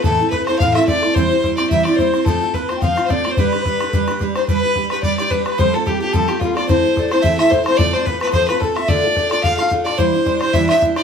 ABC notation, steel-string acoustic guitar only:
X:1
M:4/4
L:1/8
Q:"Swing" 1/4=218
K:Gmix
V:1 name="Steel-string acoustic guitar"
[A,,E,A,CEA] [A,CEA] [A,CEA] [A,CEA] [A,,E,A,CEA] [A,CEA] [A,CEA] [A,CEA] | [C,E,G,CEc] [G,CEc] [G,CEc] [G,CEc] [C,E,G,CEc] [G,CEc] [G,CEc] [G,CEc] | [F,A,CFc] [CFc] [A,CFc] [CFc] [F,A,CFc] [CFc] [A,CFc] [CFc] | [G,DGB] [DGB] [G,DGB] [DGB] [G,DGB] [DGB] [G,DGB] [DGB] |
[G,DGB] [DGB] [G,DGB] [DGB] [G,DGB] [DGB] [G,DGB] [DGB] | [F,G,CFA] [CFA] [G,CFA] [CFA] [F,G,CFA] [CFA] [G,CFA] [CFA] | [E,A,CEA] [CEA] [A,CEA] [CEA] [E,A,CEA] [CEA] [A,CEA] [CEA] | [F,A,CFA] [CFA] [A,CFA] [CFA] [F,A,CFA] [CFA] [A,CFA] [CFA] |
[D,A,DFA] [DFA] [A,DFA] [DFA] [D,A,DFA] [DFA] [A,DFA] [DFA] | [C,E,G,DEc] [G,DEc] [G,DEc] [G,DEc] [C,E,G,DEc] [G,DEc] [G,DEc] [G,DEc] |]